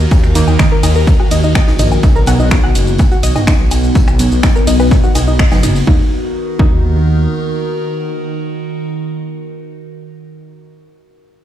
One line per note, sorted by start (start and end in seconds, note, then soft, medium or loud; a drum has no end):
0.00 1.99 D#3 medium
0.00 5.83 D#4 medium
0.00 5.83 F#4 medium
0.00 1.99 A#4 medium
0.11 0.42 D#2 loud
0.11 kick loud
0.11 ride medium
0.11 tambourine medium
0.11 low woodblock medium
0.11 shaker soft
0.24 finger snap soft
0.24 shaker soft
0.35 0.47 D#3 medium
0.35 0.47 A#3 medium
0.35 0.47 D#4 loud
0.35 open hi-hat loud
0.35 ride medium
0.35 tambourine medium
0.35 shaker medium
0.48 0.56 D#2 medium
0.48 low woodblock medium
0.48 shaker soft
0.59 0.67 D#3 medium
0.59 0.67 A#3 medium
0.59 0.67 D#4 medium
0.59 0.67 D#4 loud
0.59 0.67 D#5 medium
0.59 finger snap loud
0.59 kick loud
0.59 snare loud
0.59 tambourine loud
0.59 shaker soft
0.72 0.79 A#4 medium
0.72 0.79 A#5 medium
0.83 1.14 D#2 loud
0.83 0.95 D#4 medium
0.83 0.95 D#5 medium
0.83 open hi-hat loud
0.83 open hi-hat medium
0.83 ride medium
0.83 low woodblock medium
0.83 shaker medium
0.96 1.00 A#4 medium
0.96 1.00 A#5 medium
0.96 shaker soft
1.07 kick loud
1.07 ride medium
1.07 tambourine medium
1.07 shaker soft
1.20 1.27 F#4 medium
1.20 1.27 F#5 medium
1.20 low woodblock medium
1.31 1.62 D#2 medium
1.31 1.43 D#4 medium
1.31 1.43 D#5 medium
1.31 open hi-hat loud
1.31 ride medium
1.31 tambourine medium
1.31 shaker medium
1.44 1.51 D#4 medium
1.44 1.51 D#5 medium
1.44 shaker soft
1.55 1.60 D#5 loud
1.55 1.60 D#6 medium
1.55 finger snap loud
1.55 kick loud
1.55 snare loud
1.55 ride medium
1.55 tambourine medium
1.55 low woodblock medium
1.55 shaker soft
1.67 1.98 A#1 loud
1.67 1.72 D#4 medium
1.67 1.72 D#5 medium
1.67 snare loud
1.67 tambourine medium
1.79 1.91 D#4 medium
1.79 1.91 D#5 medium
1.79 mid tom medium
1.79 open hi-hat loud
1.79 ride medium
1.79 tambourine medium
1.79 shaker medium
1.92 low woodblock medium
1.92 shaker soft
2.03 2.34 B1 loud
2.03 5.83 B3 medium
2.03 2.11 D#4 loud
2.03 2.11 D#5 medium
2.03 kick loud
2.03 ride medium
2.03 tambourine medium
2.03 shaker soft
2.16 2.23 A#4 loud
2.16 2.23 A#5 medium
2.16 shaker soft
2.26 2.39 B2 medium
2.26 2.39 F#3 medium
2.26 2.39 B3 loud
2.26 2.32 F#5 medium
2.26 2.32 F#6 medium
2.26 open hi-hat loud
2.26 ride medium
2.26 tambourine medium
2.26 low woodblock medium
2.26 shaker medium
2.40 2.70 B1 medium
2.40 2.44 D#4 medium
2.40 2.44 D#5 medium
2.40 shaker soft
2.51 2.59 B2 medium
2.51 2.59 F#3 medium
2.51 2.59 B3 medium
2.51 2.59 F#4 loud
2.51 2.59 F#5 medium
2.51 finger snap loud
2.51 kick loud
2.51 snare loud
2.51 ride medium
2.51 tambourine medium
2.51 shaker soft
2.64 2.75 F#5 medium
2.64 2.75 F#6 medium
2.64 low woodblock medium
2.75 3.06 F#1 medium
2.75 open hi-hat loud
2.75 ride medium
2.75 tambourine medium
2.75 shaker medium
2.87 closed hi-hat soft
2.87 shaker soft
2.98 kick loud
2.98 ride medium
2.98 tambourine medium
2.98 low woodblock medium
2.98 shaker soft
3.11 3.16 F#4 medium
3.11 3.16 F#5 medium
3.11 closed hi-hat soft
3.23 3.32 B1 medium
3.23 3.31 D#5 medium
3.23 3.31 D#6 medium
3.23 open hi-hat loud
3.23 ride medium
3.23 tambourine medium
3.23 shaker medium
3.36 3.40 D#4 medium
3.36 3.40 D#5 medium
3.36 closed hi-hat soft
3.36 mid tom medium
3.36 low woodblock medium
3.36 shaker soft
3.47 3.55 D#4 loud
3.47 3.55 D#5 medium
3.47 finger snap loud
3.47 kick loud
3.47 snare loud
3.47 ride medium
3.47 tambourine medium
3.47 shaker soft
3.60 3.90 B1 loud
3.71 open hi-hat loud
3.71 ride medium
3.71 tambourine medium
3.71 low woodblock soft
3.71 shaker medium
3.84 shaker soft
3.95 4.26 B1 medium
3.95 kick loud
3.95 ride medium
3.95 tambourine medium
3.95 shaker soft
4.08 finger snap soft
4.08 low woodblock medium
4.08 shaker soft
4.19 4.31 B2 medium
4.19 4.31 F#3 medium
4.19 4.31 B3 loud
4.19 open hi-hat loud
4.19 ride medium
4.19 tambourine medium
4.19 shaker medium
4.32 4.40 B1 medium
4.32 shaker soft
4.43 4.51 B2 medium
4.43 4.51 F#3 medium
4.43 4.51 B3 medium
4.43 4.51 D#4 loud
4.43 4.51 D#5 medium
4.43 finger snap loud
4.43 kick loud
4.43 snare loud
4.43 tambourine loud
4.43 low woodblock soft
4.43 shaker soft
4.56 4.63 A#4 medium
4.56 4.63 A#5 medium
4.56 shaker soft
4.67 4.98 B1 loud
4.67 4.79 D#4 medium
4.67 4.79 D#5 medium
4.67 open hi-hat medium
4.67 open hi-hat loud
4.67 ride medium
4.67 shaker medium
4.80 4.84 B4 medium
4.80 4.84 B5 medium
4.80 low woodblock soft
4.80 shaker soft
4.91 kick loud
4.91 snare medium
4.91 ride medium
4.91 tambourine medium
4.91 shaker soft
5.04 5.11 F#4 medium
5.04 5.11 F#5 medium
5.04 shaker soft
5.15 5.46 B1 loud
5.15 5.26 D#4 medium
5.15 5.26 D#5 medium
5.15 snare loud
5.15 open hi-hat loud
5.15 ride medium
5.15 tambourine medium
5.15 low woodblock medium
5.15 shaker medium
5.28 5.35 D#4 medium
5.28 5.35 D#5 medium
5.28 shaker soft
5.39 5.44 D#5 loud
5.39 5.44 D#6 medium
5.39 finger snap loud
5.39 kick loud
5.39 open hi-hat medium
5.39 ride medium
5.39 shaker soft
5.52 5.82 F#1 loud
5.52 5.60 B2 medium
5.52 5.60 F#3 medium
5.52 5.60 B3 medium
5.52 5.56 D#4 medium
5.52 5.56 D#5 medium
5.52 snare loud
5.52 tambourine medium
5.52 low woodblock soft
5.52 shaker soft
5.63 5.75 D#4 medium
5.63 5.75 D#5 medium
5.63 mid tom medium
5.63 open hi-hat loud
5.63 ride medium
5.63 shaker medium
5.75 open hi-hat medium
5.75 shaker soft
5.87 6.01 D#2 loud
5.87 6.01 D#3 medium
5.87 8.84 D#3 medium
5.87 6.01 A#3 medium
5.87 6.01 D#4 loud
5.87 6.01 D#4 medium
5.87 8.84 D#4 medium
5.87 8.84 F#4 medium
5.87 8.84 A#4 medium
5.87 kick loud
6.59 7.27 D#2 loud
6.59 9.56 D#3 medium
6.59 9.56 A#3 medium
6.59 6.73 D#4 loud
6.59 9.56 D#4 loud
6.59 kick loud